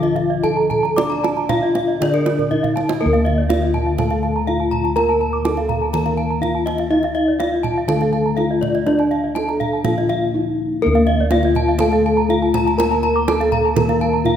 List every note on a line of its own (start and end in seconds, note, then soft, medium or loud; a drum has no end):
0.00 1.46 D3 medium
0.00 0.97 F3 medium
0.00 0.40 F4 medium
0.00 0.43 F4 medium
0.00 0.16 D#5 medium
0.00 kendang slap soft
0.16 0.30 F5 medium
0.16 kendang slap soft
0.30 0.44 D#5 medium
0.43 0.52 D#4 soft
0.43 0.97 A4 loud
0.43 0.57 A5 medium
0.43 kendang slap soft
0.43 kendang low medium
0.57 0.70 A#5 medium
0.70 0.84 A5 medium
0.70 kendang low soft
0.83 0.97 A#5 medium
0.83 kendang slap soft
0.96 2.00 D4 medium
0.96 1.50 D5 medium
0.96 2.47 D5 medium
0.96 1.10 D6 medium
0.96 kendang high medium
1.10 1.23 A#5 medium
1.10 kendang slap soft
1.24 1.37 A5 medium
1.24 kendang slap soft
1.24 kendang high soft
1.37 1.50 A#5 medium
1.37 kendang slap soft
1.49 1.58 D#4 soft
1.49 2.02 F4 medium
1.49 1.62 F5 medium
1.49 kendang slap soft
1.49 kendang high medium
1.49 kendang low medium
1.63 1.75 D#5 medium
1.75 1.88 F5 medium
1.75 kendang high medium
1.88 2.01 D#5 medium
2.00 3.00 D3 medium
2.00 3.45 D3 medium
2.00 2.51 D4 medium
2.00 2.14 D5 medium
2.00 kendang high medium
2.00 kendang low medium
2.14 2.26 A#4 medium
2.14 kendang slap soft
2.26 2.39 D5 medium
2.26 kendang slap soft
2.26 kendang high medium
2.39 2.51 A#4 medium
2.39 kendang low soft
2.51 3.00 D#4 medium
2.51 2.60 D#4 soft
2.51 2.63 D#5 medium
2.51 kendang low soft
2.63 2.76 F5 medium
2.63 kendang low medium
2.76 2.88 A5 medium
2.76 kendang high soft
2.89 3.01 D#5 medium
2.89 kendang high medium
3.01 3.99 A#3 medium
3.01 3.50 A#3 medium
3.01 3.13 A#4 medium
3.01 4.43 A#4 medium
3.06 5.93 D2 loud
3.13 3.25 F5 medium
3.13 kendang slap soft
3.25 3.37 D#5 medium
3.25 kendang slap soft
3.38 3.50 D5 medium
3.49 3.58 D#4 soft
3.49 3.99 F4 medium
3.49 3.62 F5 medium
3.49 kendang slap soft
3.49 kendang high soft
3.62 3.74 D#5 soft
3.62 kendang slap soft
3.74 3.86 A5 medium
3.74 kendang low soft
3.86 3.98 F5 medium
3.98 4.96 A3 medium
3.98 4.47 A4 medium
3.98 4.11 A5 medium
3.98 kendang high medium
3.98 kendang low medium
4.10 4.23 F5 medium
4.10 kendang slap soft
4.23 4.35 A5 medium
4.36 4.48 A#5 medium
4.47 4.55 D#4 soft
4.47 4.97 F4 medium
4.47 4.60 F5 medium
4.47 kendang slap soft
4.60 4.72 A5 soft
4.71 4.84 A#5 medium
4.71 kendang slap soft
4.71 kendang low soft
4.84 4.96 A5 soft
4.84 kendang slap soft
4.96 5.91 A#3 medium
4.96 6.39 A#4 medium
4.96 5.46 A#4 medium
4.96 5.08 A#5 medium
4.96 kendang high soft
5.09 5.21 A5 medium
5.09 kendang slap soft
5.21 5.33 A#5 soft
5.33 5.45 D6 medium
5.45 5.54 D#4 medium
5.45 5.95 A4 medium
5.45 5.57 A5 medium
5.45 kendang slap soft
5.45 kendang high medium
5.57 5.70 F5 medium
5.57 kendang slap soft
5.69 5.81 A#5 medium
5.69 kendang low soft
5.82 5.94 A5 medium
5.93 7.36 D#3 medium
5.93 6.91 A#3 medium
5.93 6.44 A#4 medium
5.93 6.06 A#5 medium
5.93 kendang high soft
5.93 kendang low medium
6.06 6.18 F5 medium
6.06 kendang slap soft
6.17 6.30 A5 medium
6.31 6.43 A#5 medium
6.42 6.50 D#4 soft
6.42 6.92 F4 medium
6.42 6.54 F5 medium
6.42 kendang slap soft
6.42 kendang low soft
6.55 6.67 A5 medium
6.66 6.79 D#5 medium
6.66 kendang slap soft
6.66 kendang high soft
6.78 6.92 F5 medium
6.78 kendang slap soft
6.90 7.89 D#3 medium
6.90 7.38 D#4 medium
6.90 7.41 D#4 medium
6.90 7.03 D#5 medium
7.03 7.16 F5 medium
7.03 kendang slap soft
7.15 7.28 D#5 medium
7.15 kendang slap soft
7.28 7.40 D5 medium
7.39 7.47 D#4 soft
7.39 7.89 F4 medium
7.39 7.52 F5 medium
7.39 kendang slap soft
7.39 kendang high medium
7.53 7.65 D#5 medium
7.63 7.76 A5 medium
7.63 kendang low medium
7.78 7.90 F5 medium
7.88 9.31 D3 medium
7.88 8.87 A3 medium
7.88 8.38 A4 medium
7.88 8.01 A5 medium
7.88 kendang high medium
7.88 kendang low medium
8.01 8.14 F5 medium
8.01 kendang slap soft
8.13 8.26 A5 medium
8.26 8.38 A#5 medium
8.37 8.46 D#4 medium
8.37 8.87 F4 medium
8.37 8.50 F5 medium
8.37 kendang slap soft
8.51 8.63 D#5 medium
8.61 8.74 D5 medium
8.61 kendang slap soft
8.61 kendang high soft
8.61 kendang low soft
8.75 8.87 D#5 medium
8.75 kendang slap soft
8.86 9.85 D3 medium
8.86 10.29 D4 medium
8.86 9.37 D4 medium
8.86 8.99 D5 medium
8.86 kendang high soft
8.99 9.12 A5 medium
8.99 kendang slap soft
9.11 9.24 F5 medium
9.11 kendang slap soft
9.24 9.36 D#5 soft
9.35 9.43 D#4 soft
9.35 9.86 A4 medium
9.35 9.48 A5 medium
9.35 kendang slap soft
9.35 kendang high soft
9.49 9.61 A#5 soft
9.49 kendang slap soft
9.60 9.73 F5 medium
9.60 kendang slap soft
9.60 kendang low soft
9.73 9.85 A5 soft
9.84 11.27 A#2 medium
9.84 10.83 F3 medium
9.84 10.35 F4 medium
9.84 9.97 F5 medium
9.84 kendang high soft
9.84 kendang low medium
9.98 10.10 D#5 medium
9.98 kendang slap soft
10.09 10.22 F5 medium
10.09 kendang slap soft
10.34 10.42 D#4 soft
10.34 10.83 D#4 medium
10.82 11.80 A#3 medium
10.82 11.32 A#3 medium
10.82 12.25 A#4 medium
10.82 10.95 A#4 medium
10.87 13.74 D2 loud
10.95 11.07 F5 medium
10.95 kendang slap soft
11.07 11.19 D#5 medium
11.07 kendang slap soft
11.20 11.32 D5 medium
11.31 11.39 D#4 soft
11.31 11.80 F4 medium
11.31 11.44 F5 medium
11.31 kendang slap soft
11.31 kendang high medium
11.43 11.57 D#5 medium
11.43 kendang slap soft
11.55 11.68 A5 medium
11.55 kendang low medium
11.68 11.81 F5 medium
11.79 12.78 A3 medium
11.79 12.29 A4 loud
11.79 11.93 A5 medium
11.79 kendang high medium
11.79 kendang low medium
11.92 12.05 F5 medium
11.92 kendang slap soft
12.06 12.18 A5 medium
12.17 12.29 A#5 medium
12.29 12.37 D#4 soft
12.29 12.78 F4 medium
12.29 12.42 F5 medium
12.29 kendang slap soft
12.42 12.54 A5 medium
12.54 12.67 A#5 medium
12.54 kendang slap soft
12.54 kendang high medium
12.54 kendang low medium
12.67 12.79 A5 medium
12.67 kendang slap soft
12.78 13.76 A#3 medium
12.78 13.27 A#4 medium
12.78 14.21 A#4 medium
12.78 12.91 A#5 medium
12.78 kendang high medium
12.91 13.03 A5 medium
12.91 kendang slap soft
13.03 13.15 A#5 medium
13.03 kendang slap soft
13.16 13.28 D6 medium
13.28 13.36 D#4 soft
13.28 13.77 A4 loud
13.28 13.40 A5 medium
13.28 kendang slap soft
13.28 kendang high medium
13.40 13.52 F5 medium
13.40 kendang slap soft
13.52 13.64 A#5 medium
13.52 kendang low medium
13.66 13.77 A5 medium
13.76 14.37 D#3 medium
13.76 14.37 A#3 medium
13.76 14.25 A#4 medium
13.76 13.89 A#5 medium
13.76 kendang high medium
13.76 kendang low medium
13.89 14.01 F5 medium
13.89 kendang slap soft
14.01 14.13 A5 medium
14.13 14.25 A#5 medium
14.24 14.35 D#4 soft
14.24 14.37 F4 medium
14.24 14.37 F5 medium
14.24 kendang slap soft
14.24 kendang low medium